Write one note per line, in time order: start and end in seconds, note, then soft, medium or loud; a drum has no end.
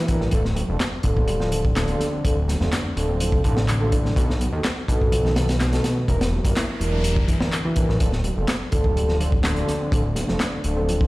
0.00 0.34 D3 medium
0.00 0.34 E3 loud
0.00 0.34 G3 medium
0.00 0.34 A#3 medium
0.00 0.34 D4 medium
0.00 0.08 E4 medium
0.08 0.24 D4 medium
0.08 0.24 E4 medium
0.08 0.15 E4 medium
0.08 0.24 G4 medium
0.08 0.24 A#4 loud
0.08 kick medium
0.08 closed hi-hat medium
0.20 0.29 A1 medium
0.20 snare soft
0.20 low conga medium
0.31 0.64 D1 loud
0.31 0.42 C4 medium
0.31 0.42 D4 medium
0.31 0.42 F4 medium
0.31 0.42 A4 loud
0.31 kick loud
0.31 closed hi-hat medium
0.45 snare soft
0.55 closed hi-hat medium
0.55 high conga medium
0.55 low conga medium
0.68 0.77 F1 medium
0.68 0.78 C4 medium
0.68 0.78 D4 medium
0.68 0.78 F4 medium
0.68 0.78 A4 medium
0.80 snare loud
0.80 clap loud
0.80 closed hi-hat medium
1.03 1.96 D1 medium
1.03 1.15 D3 loud
1.03 1.49 C4 medium
1.03 1.49 D4 medium
1.03 1.49 F4 medium
1.03 1.49 A4 medium
1.03 kick medium
1.03 closed hi-hat medium
1.16 kick medium
1.16 high conga medium
1.16 low conga medium
1.28 1.39 G3 medium
1.28 closed hi-hat medium
1.40 1.47 F3 loud
1.40 snare soft
1.52 1.59 D3 medium
1.52 1.62 C4 medium
1.52 1.62 D4 medium
1.52 1.62 F4 medium
1.52 1.62 A4 loud
1.52 closed hi-hat medium
1.65 kick medium
1.76 1.87 D3 loud
1.76 snare loud
1.76 clap loud
1.76 closed hi-hat medium
1.88 2.04 C4 medium
1.88 2.04 D4 medium
1.88 2.04 F4 medium
1.88 2.04 A4 loud
1.88 closed hi-hat soft
1.88 high conga medium
2.00 2.11 D3 medium
2.00 snare soft
2.00 closed hi-hat medium
2.12 2.59 C4 medium
2.24 2.56 D1 medium
2.24 2.34 C4 medium
2.24 2.34 D4 medium
2.24 2.34 F4 medium
2.24 2.34 A4 loud
2.24 kick loud
2.24 closed hi-hat medium
2.48 snare soft
2.48 closed hi-hat medium
2.48 high conga medium
2.48 low conga medium
2.61 2.70 F1 medium
2.61 2.71 A3 medium
2.61 2.70 C4 medium
2.61 2.70 D4 medium
2.61 2.70 F4 medium
2.61 2.70 A4 medium
2.61 snare soft
2.72 2.83 D4 medium
2.72 snare loud
2.72 clap loud
2.72 closed hi-hat medium
2.96 3.40 D1 medium
2.96 3.42 C4 medium
2.96 3.42 D4 medium
2.96 3.42 F4 medium
2.96 3.42 A4 medium
2.96 closed hi-hat medium
3.09 3.19 C4 medium
3.09 high conga medium
3.09 low conga medium
3.20 3.32 F3 medium
3.20 closed hi-hat medium
3.32 3.43 C3 medium
3.32 kick medium
3.44 4.12 A1 loud
3.44 3.56 D3 loud
3.44 3.54 C4 medium
3.44 3.54 D4 medium
3.44 3.54 F4 medium
3.44 3.54 A4 loud
3.44 kick medium
3.44 closed hi-hat medium
3.57 snare loud
3.68 clap loud
3.68 closed hi-hat medium
3.81 3.87 D3 medium
3.81 3.96 C4 medium
3.81 3.96 D4 medium
3.81 3.96 F4 medium
3.81 3.96 A4 loud
3.81 high conga medium
3.92 3.99 D4 medium
3.92 kick loud
3.92 closed hi-hat medium
4.05 snare soft
4.05 low conga medium
4.16 4.48 B1 loud
4.16 4.26 B3 medium
4.16 4.26 D#4 medium
4.16 4.26 F#4 medium
4.16 4.26 A4 loud
4.16 kick loud
4.16 closed hi-hat medium
4.30 snare soft
4.40 closed hi-hat medium
4.40 high conga medium
4.40 low conga medium
4.53 4.61 D#2 medium
4.53 4.62 B3 medium
4.53 4.62 D#4 medium
4.53 4.62 F#4 medium
4.53 4.62 A4 medium
4.64 snare loud
4.64 clap loud
4.64 closed hi-hat medium
4.88 5.80 B1 medium
4.88 4.99 B2 loud
4.88 5.33 B3 medium
4.88 5.34 D#4 medium
4.88 5.34 F#4 medium
4.88 5.33 A4 medium
4.88 kick medium
4.88 closed hi-hat medium
5.00 kick medium
5.00 high conga medium
5.00 low conga medium
5.12 5.23 F3 loud
5.12 closed hi-hat medium
5.25 5.31 D#3 loud
5.25 snare soft
5.36 5.43 B2 medium
5.36 5.46 B3 medium
5.36 5.46 D#4 medium
5.36 5.46 F#4 medium
5.36 5.46 A4 loud
5.36 snare loud
5.36 closed hi-hat medium
5.49 snare loud
5.49 closed hi-hat medium
5.60 5.71 B2 loud
5.60 snare loud
5.60 clap medium
5.60 closed hi-hat medium
5.72 5.88 B3 medium
5.72 5.88 D#4 medium
5.72 5.88 F#4 medium
5.72 5.88 A4 loud
5.72 snare loud
5.72 closed hi-hat medium
5.72 high conga medium
5.84 5.95 B2 medium
5.84 snare loud
5.84 closed hi-hat medium
5.97 6.08 A3 medium
6.08 6.40 E1 loud
6.08 6.18 D4 medium
6.08 6.18 E4 medium
6.08 6.18 G4 medium
6.08 6.18 A#4 loud
6.08 kick medium
6.08 closed hi-hat medium
6.08 noise sweep medium
6.21 snare loud
6.21 closed hi-hat medium
6.32 high conga loud
6.32 low conga medium
6.44 6.53 G1 medium
6.44 6.55 A#3 medium
6.44 6.54 D4 medium
6.44 6.54 E4 medium
6.44 6.54 G4 medium
6.44 6.54 A#4 medium
6.44 kick medium
6.44 closed hi-hat medium
6.56 6.67 E4 medium
6.56 snare loud
6.56 clap loud
6.56 closed hi-hat medium
6.80 7.24 E1 medium
6.80 7.25 D4 medium
6.80 7.25 E4 medium
6.80 7.25 G4 medium
6.80 7.25 A#4 medium
6.80 closed hi-hat medium
6.93 7.03 D4 medium
6.93 high conga medium
6.93 low conga medium
7.04 7.16 G3 medium
7.04 closed hi-hat medium
7.16 7.27 D3 medium
7.16 kick loud
7.28 7.39 E3 loud
7.28 kick loud
7.28 closed hi-hat medium
7.40 7.50 D4 medium
7.40 7.50 E4 medium
7.40 7.50 G4 medium
7.40 7.50 A#4 medium
7.40 snare loud
7.52 clap loud
7.52 closed hi-hat medium
7.64 7.71 E3 loud
7.64 high conga medium
7.76 7.92 D4 medium
7.76 7.83 E4 medium
7.76 7.92 E4 medium
7.76 7.92 G4 medium
7.76 7.92 A#4 loud
7.76 kick medium
7.76 closed hi-hat medium
7.89 7.98 A1 medium
7.89 snare soft
7.89 low conga medium
8.00 8.32 D1 loud
8.00 8.10 C4 medium
8.00 8.10 D4 medium
8.00 8.10 F4 medium
8.00 8.10 A4 loud
8.00 kick loud
8.00 closed hi-hat medium
8.12 snare medium
8.24 closed hi-hat medium
8.24 high conga medium
8.24 low conga loud
8.37 8.45 F1 medium
8.37 8.46 C4 medium
8.37 8.46 D4 medium
8.37 8.46 F4 medium
8.37 8.46 A4 medium
8.48 snare loud
8.48 clap loud
8.48 closed hi-hat medium
8.72 9.64 D1 medium
8.72 8.83 D3 loud
8.72 9.18 C4 medium
8.72 9.17 D4 medium
8.72 9.18 F4 medium
8.72 9.18 A4 medium
8.72 kick medium
8.72 closed hi-hat medium
8.84 kick medium
8.84 high conga medium
8.84 low conga medium
8.96 9.07 G3 loud
8.96 closed hi-hat medium
9.09 9.15 F3 loud
9.09 snare soft
9.20 9.27 D3 medium
9.20 9.30 C4 medium
9.20 9.30 D4 medium
9.20 9.30 F4 medium
9.20 9.30 A4 loud
9.20 closed hi-hat medium
9.32 kick loud
9.43 9.55 D3 loud
9.43 snare loud
9.43 clap loud
9.43 closed hi-hat medium
9.56 9.72 C4 medium
9.56 9.72 D4 medium
9.56 9.72 F4 medium
9.56 9.72 A4 loud
9.56 closed hi-hat soft
9.56 high conga medium
9.67 9.79 D3 medium
9.67 snare soft
9.67 closed hi-hat medium
9.81 10.27 C4 medium
9.92 10.24 D1 loud
9.92 10.02 C4 medium
9.92 10.02 D4 medium
9.92 10.02 F4 medium
9.92 10.02 A4 loud
9.92 kick loud
9.92 closed hi-hat medium
10.16 snare soft
10.16 closed hi-hat medium
10.16 high conga loud
10.16 low conga medium
10.28 10.38 F1 medium
10.28 10.39 A3 medium
10.28 10.38 C4 medium
10.28 10.38 D4 medium
10.28 10.38 F4 medium
10.28 10.38 A4 medium
10.28 snare soft
10.40 10.51 D4 medium
10.40 snare loud
10.40 clap loud
10.40 closed hi-hat medium
10.64 11.07 D1 medium
10.64 11.07 C4 medium
10.64 11.07 D4 medium
10.64 11.07 F4 medium
10.64 11.07 A4 medium
10.64 closed hi-hat medium
10.76 10.87 C4 medium
10.76 high conga medium
10.76 low conga medium
10.88 10.99 F3 medium
10.88 closed hi-hat medium
11.01 11.07 C3 medium
11.01 kick medium